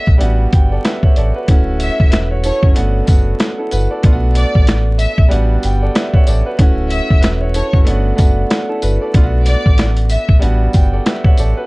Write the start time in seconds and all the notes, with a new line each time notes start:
Already playing: A3 B3 D4 F#4
0.07 B1, kick
0.18 A1 G3 B3 D4 F#4, closed hi-hat
0.53 G1 G5, kick, closed hi-hat
0.72 A4 D5
0.84 B4 E5, snare, closed hi-hat
1.03 C#5 E5 F#5, kick
1.16 A1 A4 D5, closed hi-hat
1.35 F#4 B4
1.47 D1 A3 C#4 E4 F#4, kick, closed hi-hat
1.80 E5, closed hi-hat, tambourine
2.00 E1, kick
2.10 F#4 B4, snare, closed hi-hat
2.31 F#4 C#5
2.44 E4 A4 C#5, closed hi-hat, tambourine
2.63 F#1 C#4 F#4, kick
2.74 G1 A3 B3 D4 F#4, closed hi-hat
3.05 F#1 A3 B3 D4 F#4, kick, closed hi-hat, tambourine
3.40 snare, closed hi-hat
3.59 E4 A4
3.71 G1 F#4 B4, closed hi-hat, tambourine
3.91 A4 D5
4.03 B1 A3 B3 D4 F4, kick, closed hi-hat
4.12 F#4
4.35 D5, closed hi-hat, tambourine
4.55 A1, kick
4.67 snare, closed hi-hat
4.99 E5, closed hi-hat, tambourine
5.18 B1, kick
5.28 A1 G3 B3 D4 F#4, closed hi-hat
5.63 G1 G5, closed hi-hat, tambourine
5.82 A4 D5
5.95 B4 E5, snare, closed hi-hat
6.14 C#5 E5 F#5, kick
6.27 A1 A4 D5, closed hi-hat, tambourine
6.46 F#4 B4
6.58 D1 A3 C#4 E4 F#4, kick, closed hi-hat
6.90 E5, closed hi-hat, tambourine
7.10 E1, kick
7.21 F#4 B4, snare, closed hi-hat
7.41 F#4 C#5
7.54 E4 A4 C#5, closed hi-hat, tambourine
7.73 F#1 C#4 F#4, kick
7.85 G1 A3 B3 D4 F#4, closed hi-hat
8.16 F#1 A3 B3 D4 F#4, kick, closed hi-hat, tambourine
8.50 snare, closed hi-hat
8.69 E4 A4
8.82 G1 F#4 B4, closed hi-hat, tambourine
9.01 A4 D5
9.13 B1 A3 B3 D4 F4, kick, closed hi-hat
9.23 F#4
9.45 D5, snare, closed hi-hat, tambourine
9.66 A1, kick
9.78 snare, closed hi-hat
9.97 closed hi-hat
10.10 E5, closed hi-hat, tambourine
10.29 B1, kick
10.39 A1 G3 B3 D4 F#4, closed hi-hat
10.73 G1 G5, kick, closed hi-hat, tambourine
10.93 A4 D5
11.06 B4 E5, snare, closed hi-hat
11.24 C#5 E5 F#5, kick
11.37 A1 A4 D5, closed hi-hat, tambourine
11.57 F#4 B4